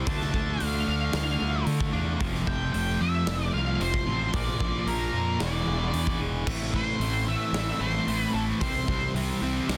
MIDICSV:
0, 0, Header, 1, 6, 480
1, 0, Start_track
1, 0, Tempo, 534283
1, 62, Time_signature, 4, 2, 24, 8
1, 8778, End_track
2, 0, Start_track
2, 0, Title_t, "Lead electric guitar"
2, 0, Program_c, 0, 29
2, 86, Note_on_c, 0, 81, 98
2, 445, Note_off_c, 0, 81, 0
2, 451, Note_on_c, 0, 77, 88
2, 783, Note_off_c, 0, 77, 0
2, 794, Note_on_c, 0, 77, 77
2, 1473, Note_off_c, 0, 77, 0
2, 2222, Note_on_c, 0, 79, 104
2, 2439, Note_off_c, 0, 79, 0
2, 2450, Note_on_c, 0, 79, 109
2, 2704, Note_off_c, 0, 79, 0
2, 2705, Note_on_c, 0, 76, 106
2, 3176, Note_off_c, 0, 76, 0
2, 3180, Note_on_c, 0, 77, 87
2, 3425, Note_on_c, 0, 72, 86
2, 3428, Note_off_c, 0, 77, 0
2, 3898, Note_on_c, 0, 74, 94
2, 3918, Note_off_c, 0, 72, 0
2, 4385, Note_on_c, 0, 70, 89
2, 4394, Note_off_c, 0, 74, 0
2, 4830, Note_off_c, 0, 70, 0
2, 4877, Note_on_c, 0, 74, 75
2, 5553, Note_off_c, 0, 74, 0
2, 6072, Note_on_c, 0, 72, 90
2, 6542, Note_on_c, 0, 76, 107
2, 6561, Note_off_c, 0, 72, 0
2, 7015, Note_on_c, 0, 72, 90
2, 7036, Note_off_c, 0, 76, 0
2, 7374, Note_off_c, 0, 72, 0
2, 7374, Note_on_c, 0, 71, 90
2, 7492, Note_off_c, 0, 71, 0
2, 7496, Note_on_c, 0, 69, 81
2, 7561, Note_off_c, 0, 69, 0
2, 7735, Note_on_c, 0, 72, 80
2, 8185, Note_off_c, 0, 72, 0
2, 8778, End_track
3, 0, Start_track
3, 0, Title_t, "Clean electric guitar"
3, 0, Program_c, 1, 27
3, 70, Note_on_c, 1, 50, 75
3, 317, Note_on_c, 1, 57, 67
3, 538, Note_off_c, 1, 57, 0
3, 549, Note_on_c, 1, 57, 68
3, 775, Note_off_c, 1, 50, 0
3, 786, Note_on_c, 1, 50, 67
3, 1009, Note_off_c, 1, 57, 0
3, 1020, Note_on_c, 1, 57, 73
3, 1265, Note_on_c, 1, 65, 76
3, 1497, Note_on_c, 1, 62, 70
3, 1732, Note_off_c, 1, 65, 0
3, 1736, Note_on_c, 1, 65, 77
3, 1977, Note_off_c, 1, 50, 0
3, 1980, Note_off_c, 1, 62, 0
3, 1980, Note_on_c, 1, 53, 74
3, 1982, Note_off_c, 1, 57, 0
3, 2217, Note_on_c, 1, 57, 64
3, 2451, Note_off_c, 1, 57, 0
3, 2462, Note_on_c, 1, 57, 69
3, 2688, Note_off_c, 1, 53, 0
3, 2699, Note_on_c, 1, 53, 73
3, 2924, Note_off_c, 1, 57, 0
3, 2935, Note_on_c, 1, 57, 77
3, 3170, Note_off_c, 1, 65, 0
3, 3174, Note_on_c, 1, 65, 79
3, 3414, Note_on_c, 1, 60, 76
3, 3646, Note_off_c, 1, 65, 0
3, 3657, Note_on_c, 1, 65, 75
3, 3898, Note_off_c, 1, 57, 0
3, 3898, Note_off_c, 1, 60, 0
3, 3899, Note_off_c, 1, 65, 0
3, 3900, Note_off_c, 1, 53, 0
3, 3902, Note_on_c, 1, 46, 77
3, 4136, Note_on_c, 1, 53, 67
3, 4374, Note_on_c, 1, 58, 73
3, 4596, Note_off_c, 1, 53, 0
3, 4607, Note_on_c, 1, 53, 73
3, 4851, Note_off_c, 1, 53, 0
3, 4855, Note_on_c, 1, 52, 79
3, 4857, Note_off_c, 1, 58, 0
3, 4861, Note_off_c, 1, 46, 0
3, 5094, Note_on_c, 1, 68, 72
3, 5332, Note_on_c, 1, 62, 74
3, 5566, Note_off_c, 1, 68, 0
3, 5577, Note_on_c, 1, 68, 79
3, 5810, Note_off_c, 1, 52, 0
3, 5813, Note_on_c, 1, 45, 82
3, 5817, Note_off_c, 1, 62, 0
3, 5819, Note_off_c, 1, 68, 0
3, 5821, Note_on_c, 1, 52, 90
3, 5827, Note_on_c, 1, 57, 88
3, 5829, Note_on_c, 1, 60, 99
3, 5837, Note_on_c, 1, 64, 93
3, 6043, Note_off_c, 1, 57, 0
3, 6044, Note_off_c, 1, 52, 0
3, 6048, Note_on_c, 1, 52, 72
3, 6054, Note_on_c, 1, 57, 75
3, 6059, Note_off_c, 1, 60, 0
3, 6061, Note_off_c, 1, 64, 0
3, 6062, Note_on_c, 1, 60, 75
3, 6064, Note_on_c, 1, 64, 81
3, 6273, Note_off_c, 1, 45, 0
3, 6282, Note_off_c, 1, 57, 0
3, 6284, Note_on_c, 1, 45, 84
3, 6286, Note_off_c, 1, 52, 0
3, 6290, Note_on_c, 1, 52, 92
3, 6293, Note_on_c, 1, 57, 88
3, 6294, Note_off_c, 1, 60, 0
3, 6297, Note_on_c, 1, 60, 96
3, 6300, Note_off_c, 1, 64, 0
3, 6304, Note_on_c, 1, 64, 100
3, 6401, Note_off_c, 1, 64, 0
3, 6404, Note_on_c, 1, 64, 62
3, 6412, Note_off_c, 1, 60, 0
3, 6416, Note_off_c, 1, 57, 0
3, 6416, Note_on_c, 1, 60, 69
3, 6427, Note_on_c, 1, 57, 51
3, 6521, Note_off_c, 1, 52, 0
3, 6523, Note_off_c, 1, 57, 0
3, 6524, Note_on_c, 1, 52, 75
3, 6533, Note_on_c, 1, 57, 76
3, 6534, Note_off_c, 1, 60, 0
3, 6537, Note_on_c, 1, 60, 75
3, 6542, Note_off_c, 1, 64, 0
3, 6546, Note_on_c, 1, 64, 83
3, 6633, Note_off_c, 1, 64, 0
3, 6643, Note_on_c, 1, 64, 69
3, 6648, Note_off_c, 1, 60, 0
3, 6652, Note_off_c, 1, 45, 0
3, 6652, Note_on_c, 1, 60, 60
3, 6653, Note_off_c, 1, 57, 0
3, 6664, Note_on_c, 1, 57, 59
3, 6876, Note_off_c, 1, 64, 0
3, 6887, Note_on_c, 1, 64, 62
3, 6893, Note_off_c, 1, 52, 0
3, 6896, Note_off_c, 1, 60, 0
3, 6899, Note_off_c, 1, 57, 0
3, 6900, Note_on_c, 1, 60, 57
3, 6910, Note_on_c, 1, 57, 58
3, 6998, Note_on_c, 1, 52, 77
3, 7000, Note_off_c, 1, 57, 0
3, 7010, Note_off_c, 1, 64, 0
3, 7010, Note_on_c, 1, 57, 73
3, 7012, Note_off_c, 1, 60, 0
3, 7015, Note_on_c, 1, 60, 72
3, 7021, Note_on_c, 1, 64, 83
3, 7120, Note_off_c, 1, 64, 0
3, 7131, Note_on_c, 1, 64, 68
3, 7141, Note_off_c, 1, 60, 0
3, 7144, Note_off_c, 1, 57, 0
3, 7145, Note_on_c, 1, 60, 61
3, 7155, Note_on_c, 1, 57, 55
3, 7247, Note_off_c, 1, 52, 0
3, 7249, Note_on_c, 1, 45, 95
3, 7251, Note_off_c, 1, 57, 0
3, 7257, Note_on_c, 1, 52, 85
3, 7260, Note_off_c, 1, 64, 0
3, 7262, Note_off_c, 1, 60, 0
3, 7262, Note_on_c, 1, 57, 92
3, 7265, Note_on_c, 1, 60, 99
3, 7270, Note_on_c, 1, 64, 102
3, 7485, Note_off_c, 1, 52, 0
3, 7490, Note_off_c, 1, 57, 0
3, 7495, Note_on_c, 1, 52, 69
3, 7500, Note_on_c, 1, 57, 79
3, 7504, Note_off_c, 1, 60, 0
3, 7504, Note_off_c, 1, 64, 0
3, 7507, Note_on_c, 1, 60, 86
3, 7515, Note_on_c, 1, 64, 77
3, 7602, Note_off_c, 1, 64, 0
3, 7613, Note_on_c, 1, 64, 69
3, 7624, Note_off_c, 1, 60, 0
3, 7625, Note_off_c, 1, 57, 0
3, 7628, Note_on_c, 1, 60, 61
3, 7636, Note_on_c, 1, 57, 56
3, 7721, Note_off_c, 1, 45, 0
3, 7723, Note_off_c, 1, 64, 0
3, 7724, Note_off_c, 1, 52, 0
3, 7734, Note_off_c, 1, 57, 0
3, 7735, Note_on_c, 1, 48, 91
3, 7743, Note_on_c, 1, 52, 87
3, 7749, Note_on_c, 1, 55, 90
3, 7751, Note_off_c, 1, 60, 0
3, 7754, Note_on_c, 1, 60, 90
3, 7759, Note_on_c, 1, 64, 99
3, 7965, Note_off_c, 1, 52, 0
3, 7971, Note_off_c, 1, 55, 0
3, 7975, Note_on_c, 1, 52, 71
3, 7982, Note_on_c, 1, 55, 76
3, 7983, Note_off_c, 1, 64, 0
3, 7988, Note_off_c, 1, 60, 0
3, 7991, Note_on_c, 1, 60, 74
3, 7994, Note_on_c, 1, 64, 79
3, 8201, Note_off_c, 1, 48, 0
3, 8209, Note_off_c, 1, 52, 0
3, 8212, Note_off_c, 1, 55, 0
3, 8212, Note_on_c, 1, 48, 95
3, 8219, Note_on_c, 1, 52, 93
3, 8223, Note_on_c, 1, 55, 101
3, 8225, Note_off_c, 1, 64, 0
3, 8228, Note_off_c, 1, 60, 0
3, 8232, Note_on_c, 1, 60, 97
3, 8236, Note_on_c, 1, 64, 91
3, 8322, Note_off_c, 1, 64, 0
3, 8333, Note_on_c, 1, 64, 71
3, 8340, Note_off_c, 1, 60, 0
3, 8343, Note_on_c, 1, 60, 63
3, 8344, Note_off_c, 1, 55, 0
3, 8355, Note_on_c, 1, 55, 61
3, 8445, Note_off_c, 1, 52, 0
3, 8454, Note_off_c, 1, 55, 0
3, 8455, Note_on_c, 1, 52, 77
3, 8464, Note_on_c, 1, 55, 75
3, 8468, Note_off_c, 1, 60, 0
3, 8470, Note_off_c, 1, 64, 0
3, 8472, Note_on_c, 1, 60, 86
3, 8481, Note_on_c, 1, 64, 81
3, 8554, Note_off_c, 1, 64, 0
3, 8565, Note_on_c, 1, 64, 69
3, 8570, Note_off_c, 1, 60, 0
3, 8577, Note_off_c, 1, 48, 0
3, 8580, Note_off_c, 1, 55, 0
3, 8581, Note_on_c, 1, 60, 66
3, 8591, Note_on_c, 1, 55, 60
3, 8778, Note_off_c, 1, 52, 0
3, 8778, Note_off_c, 1, 55, 0
3, 8778, Note_off_c, 1, 60, 0
3, 8778, Note_off_c, 1, 64, 0
3, 8778, End_track
4, 0, Start_track
4, 0, Title_t, "Distorted electric guitar"
4, 0, Program_c, 2, 30
4, 74, Note_on_c, 2, 57, 79
4, 88, Note_on_c, 2, 62, 91
4, 1722, Note_off_c, 2, 62, 0
4, 1733, Note_on_c, 2, 62, 91
4, 1735, Note_off_c, 2, 57, 0
4, 1750, Note_on_c, 2, 57, 85
4, 1763, Note_on_c, 2, 50, 72
4, 1963, Note_off_c, 2, 62, 0
4, 1968, Note_on_c, 2, 41, 85
4, 1972, Note_off_c, 2, 57, 0
4, 1979, Note_off_c, 2, 50, 0
4, 1984, Note_on_c, 2, 48, 84
4, 3640, Note_off_c, 2, 41, 0
4, 3648, Note_off_c, 2, 48, 0
4, 3650, Note_on_c, 2, 53, 93
4, 3666, Note_on_c, 2, 48, 77
4, 3679, Note_on_c, 2, 41, 72
4, 3881, Note_off_c, 2, 48, 0
4, 3881, Note_off_c, 2, 53, 0
4, 3896, Note_off_c, 2, 41, 0
4, 3903, Note_on_c, 2, 53, 92
4, 3918, Note_on_c, 2, 58, 91
4, 4842, Note_on_c, 2, 40, 83
4, 4847, Note_off_c, 2, 53, 0
4, 4855, Note_off_c, 2, 58, 0
4, 4858, Note_on_c, 2, 47, 89
4, 5797, Note_off_c, 2, 40, 0
4, 5805, Note_off_c, 2, 47, 0
4, 6051, Note_on_c, 2, 45, 78
4, 6283, Note_off_c, 2, 45, 0
4, 6534, Note_on_c, 2, 45, 72
4, 6763, Note_off_c, 2, 45, 0
4, 6774, Note_on_c, 2, 45, 90
4, 6784, Note_on_c, 2, 52, 98
4, 6786, Note_on_c, 2, 57, 107
4, 7006, Note_off_c, 2, 45, 0
4, 7015, Note_off_c, 2, 52, 0
4, 7017, Note_on_c, 2, 45, 85
4, 7018, Note_off_c, 2, 57, 0
4, 7238, Note_off_c, 2, 45, 0
4, 7496, Note_on_c, 2, 45, 86
4, 7724, Note_off_c, 2, 45, 0
4, 7973, Note_on_c, 2, 48, 86
4, 8208, Note_off_c, 2, 48, 0
4, 8460, Note_on_c, 2, 48, 78
4, 8682, Note_off_c, 2, 48, 0
4, 8693, Note_on_c, 2, 48, 92
4, 8700, Note_on_c, 2, 55, 104
4, 8704, Note_on_c, 2, 60, 100
4, 8778, Note_off_c, 2, 48, 0
4, 8778, Note_off_c, 2, 55, 0
4, 8778, Note_off_c, 2, 60, 0
4, 8778, End_track
5, 0, Start_track
5, 0, Title_t, "Fingered electric bass"
5, 0, Program_c, 3, 33
5, 63, Note_on_c, 3, 38, 82
5, 261, Note_off_c, 3, 38, 0
5, 306, Note_on_c, 3, 38, 86
5, 503, Note_off_c, 3, 38, 0
5, 554, Note_on_c, 3, 38, 85
5, 747, Note_off_c, 3, 38, 0
5, 790, Note_on_c, 3, 38, 84
5, 985, Note_off_c, 3, 38, 0
5, 1022, Note_on_c, 3, 38, 96
5, 1220, Note_off_c, 3, 38, 0
5, 1270, Note_on_c, 3, 38, 91
5, 1465, Note_off_c, 3, 38, 0
5, 1495, Note_on_c, 3, 50, 82
5, 1696, Note_off_c, 3, 50, 0
5, 1737, Note_on_c, 3, 40, 83
5, 1937, Note_off_c, 3, 40, 0
5, 1986, Note_on_c, 3, 29, 95
5, 2182, Note_off_c, 3, 29, 0
5, 2219, Note_on_c, 3, 29, 85
5, 2418, Note_off_c, 3, 29, 0
5, 2463, Note_on_c, 3, 29, 86
5, 2660, Note_off_c, 3, 29, 0
5, 2700, Note_on_c, 3, 41, 86
5, 2899, Note_off_c, 3, 41, 0
5, 2935, Note_on_c, 3, 29, 98
5, 3136, Note_off_c, 3, 29, 0
5, 3182, Note_on_c, 3, 36, 93
5, 3380, Note_off_c, 3, 36, 0
5, 3418, Note_on_c, 3, 29, 88
5, 3618, Note_off_c, 3, 29, 0
5, 3657, Note_on_c, 3, 33, 87
5, 3857, Note_off_c, 3, 33, 0
5, 3898, Note_on_c, 3, 34, 92
5, 4097, Note_off_c, 3, 34, 0
5, 4137, Note_on_c, 3, 34, 88
5, 4336, Note_off_c, 3, 34, 0
5, 4369, Note_on_c, 3, 34, 94
5, 4572, Note_off_c, 3, 34, 0
5, 4610, Note_on_c, 3, 41, 86
5, 4812, Note_off_c, 3, 41, 0
5, 4855, Note_on_c, 3, 28, 91
5, 5055, Note_off_c, 3, 28, 0
5, 5099, Note_on_c, 3, 28, 92
5, 5298, Note_off_c, 3, 28, 0
5, 5332, Note_on_c, 3, 40, 89
5, 5533, Note_off_c, 3, 40, 0
5, 5567, Note_on_c, 3, 28, 84
5, 5770, Note_off_c, 3, 28, 0
5, 5813, Note_on_c, 3, 33, 91
5, 6129, Note_off_c, 3, 33, 0
5, 6283, Note_on_c, 3, 33, 84
5, 6602, Note_off_c, 3, 33, 0
5, 6760, Note_on_c, 3, 33, 89
5, 6924, Note_off_c, 3, 33, 0
5, 7011, Note_on_c, 3, 33, 83
5, 7171, Note_off_c, 3, 33, 0
5, 7250, Note_on_c, 3, 33, 83
5, 7410, Note_off_c, 3, 33, 0
5, 7492, Note_on_c, 3, 33, 81
5, 7652, Note_off_c, 3, 33, 0
5, 7740, Note_on_c, 3, 36, 89
5, 7897, Note_off_c, 3, 36, 0
5, 7977, Note_on_c, 3, 36, 88
5, 8135, Note_off_c, 3, 36, 0
5, 8204, Note_on_c, 3, 36, 84
5, 8366, Note_off_c, 3, 36, 0
5, 8456, Note_on_c, 3, 36, 85
5, 8615, Note_off_c, 3, 36, 0
5, 8703, Note_on_c, 3, 36, 90
5, 8778, Note_off_c, 3, 36, 0
5, 8778, End_track
6, 0, Start_track
6, 0, Title_t, "Drums"
6, 58, Note_on_c, 9, 46, 55
6, 62, Note_on_c, 9, 36, 97
6, 148, Note_off_c, 9, 46, 0
6, 152, Note_off_c, 9, 36, 0
6, 180, Note_on_c, 9, 38, 32
6, 270, Note_off_c, 9, 38, 0
6, 304, Note_on_c, 9, 36, 78
6, 393, Note_off_c, 9, 36, 0
6, 539, Note_on_c, 9, 46, 53
6, 629, Note_off_c, 9, 46, 0
6, 1015, Note_on_c, 9, 46, 57
6, 1019, Note_on_c, 9, 38, 105
6, 1105, Note_off_c, 9, 46, 0
6, 1108, Note_off_c, 9, 38, 0
6, 1496, Note_on_c, 9, 46, 54
6, 1586, Note_off_c, 9, 46, 0
6, 1622, Note_on_c, 9, 36, 86
6, 1711, Note_off_c, 9, 36, 0
6, 1978, Note_on_c, 9, 46, 52
6, 1982, Note_on_c, 9, 36, 106
6, 2068, Note_off_c, 9, 46, 0
6, 2071, Note_off_c, 9, 36, 0
6, 2107, Note_on_c, 9, 38, 32
6, 2196, Note_off_c, 9, 38, 0
6, 2221, Note_on_c, 9, 36, 79
6, 2311, Note_off_c, 9, 36, 0
6, 2462, Note_on_c, 9, 46, 50
6, 2551, Note_off_c, 9, 46, 0
6, 2936, Note_on_c, 9, 46, 51
6, 2939, Note_on_c, 9, 38, 114
6, 3026, Note_off_c, 9, 46, 0
6, 3029, Note_off_c, 9, 38, 0
6, 3419, Note_on_c, 9, 46, 51
6, 3509, Note_off_c, 9, 46, 0
6, 3538, Note_on_c, 9, 36, 84
6, 3628, Note_off_c, 9, 36, 0
6, 3893, Note_on_c, 9, 46, 55
6, 3897, Note_on_c, 9, 36, 106
6, 3983, Note_off_c, 9, 46, 0
6, 3986, Note_off_c, 9, 36, 0
6, 4137, Note_on_c, 9, 36, 87
6, 4226, Note_off_c, 9, 36, 0
6, 4378, Note_on_c, 9, 46, 54
6, 4468, Note_off_c, 9, 46, 0
6, 4852, Note_on_c, 9, 46, 56
6, 4855, Note_on_c, 9, 38, 105
6, 4941, Note_off_c, 9, 46, 0
6, 4945, Note_off_c, 9, 38, 0
6, 5331, Note_on_c, 9, 46, 56
6, 5421, Note_off_c, 9, 46, 0
6, 5453, Note_on_c, 9, 36, 82
6, 5543, Note_off_c, 9, 36, 0
6, 5812, Note_on_c, 9, 49, 110
6, 5813, Note_on_c, 9, 36, 102
6, 5902, Note_off_c, 9, 49, 0
6, 5903, Note_off_c, 9, 36, 0
6, 6052, Note_on_c, 9, 36, 82
6, 6142, Note_off_c, 9, 36, 0
6, 6296, Note_on_c, 9, 46, 54
6, 6386, Note_off_c, 9, 46, 0
6, 6774, Note_on_c, 9, 46, 55
6, 6778, Note_on_c, 9, 38, 115
6, 6864, Note_off_c, 9, 46, 0
6, 6867, Note_off_c, 9, 38, 0
6, 7257, Note_on_c, 9, 46, 53
6, 7347, Note_off_c, 9, 46, 0
6, 7736, Note_on_c, 9, 46, 56
6, 7738, Note_on_c, 9, 36, 99
6, 7826, Note_off_c, 9, 46, 0
6, 7828, Note_off_c, 9, 36, 0
6, 7980, Note_on_c, 9, 36, 83
6, 8070, Note_off_c, 9, 36, 0
6, 8227, Note_on_c, 9, 46, 55
6, 8317, Note_off_c, 9, 46, 0
6, 8706, Note_on_c, 9, 46, 61
6, 8710, Note_on_c, 9, 38, 109
6, 8778, Note_off_c, 9, 38, 0
6, 8778, Note_off_c, 9, 46, 0
6, 8778, End_track
0, 0, End_of_file